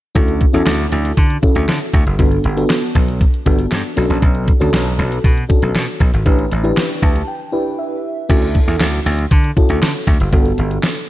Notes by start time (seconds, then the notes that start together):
0.15 D2 C#4 E4 F#4 A4, kick, closed hi-hat
0.28 closed hi-hat
0.41 kick, closed hi-hat
0.53 E2 C#4 E4 F#4 A4, closed hi-hat
0.66 D2, snare, clap, closed hi-hat
0.92 D2, closed hi-hat
1.05 closed hi-hat
1.17 D3, kick, closed hi-hat
1.30 closed hi-hat
1.42 C#4 E4 F#4 A4, kick, closed hi-hat
1.55 D2, closed hi-hat
1.68 D3, snare, clap, closed hi-hat
1.81 closed hi-hat
1.94 D2, kick, closed hi-hat
2.06 F#1, closed hi-hat
2.19 G1 B3 D4 F#4 A4, kick, closed hi-hat
2.31 closed hi-hat
2.44 G1, closed hi-hat
2.57 B3 D4 F#4 A4, closed hi-hat
2.70 snare, clap, closed hi-hat
2.95 B1, kick, closed hi-hat
3.08 closed hi-hat
3.21 kick, closed hi-hat
3.34 closed hi-hat
3.46 G1 B3 D4 F#4 A4, kick, closed hi-hat
3.59 closed hi-hat
3.71 G2, snare, clap, closed hi-hat
3.84 closed hi-hat
3.96 B1 C#4 D4 F#4 A4, closed hi-hat
4.10 A#1, closed hi-hat
4.22 B1, kick, closed hi-hat
4.35 closed hi-hat
4.48 kick, closed hi-hat
4.60 D2 C#4 D4 F#4 A4, closed hi-hat
4.74 B1, snare, clap, closed hi-hat
4.99 B1, closed hi-hat
5.12 closed hi-hat
5.24 B2, kick, closed hi-hat
5.37 closed hi-hat
5.49 C#4 D4 F#4 A4, kick, closed hi-hat
5.62 B1, closed hi-hat
5.75 B2, snare, clap, closed hi-hat
5.88 closed hi-hat
6.00 B1, kick, closed hi-hat
6.13 G#1, closed hi-hat
6.25 A1 D4 E4 G4 B4, kick, closed hi-hat
6.39 closed hi-hat
6.52 A1, closed hi-hat
6.64 D4 E4 G4 B4, closed hi-hat
6.77 snare, clap, closed hi-hat
6.90 closed hi-hat
7.02 D2 A5, kick, closed hi-hat
7.16 closed hi-hat
7.28 G5
7.52 D4 E4 G4 B4
7.79 E5
8.29 D2 C#4 E4 F#4 A4, kick, closed hi-hat, crash
8.42 closed hi-hat
8.55 kick, closed hi-hat
8.68 E2, closed hi-hat
8.80 D2, snare, clap, closed hi-hat, tambourine
9.06 D2, open hi-hat
9.19 closed hi-hat
9.31 D3, kick, closed hi-hat
9.44 closed hi-hat
9.56 C#4 E4 F#4 A4, kick, closed hi-hat
9.69 D2, closed hi-hat
9.82 D3, snare, clap, closed hi-hat, tambourine
9.95 closed hi-hat
10.07 D2, kick, closed hi-hat
10.20 F#1, closed hi-hat
10.33 G1 B3 D4 F#4 A4, kick, closed hi-hat
10.46 closed hi-hat
10.58 G1, closed hi-hat
10.71 closed hi-hat
10.83 snare, clap, closed hi-hat, tambourine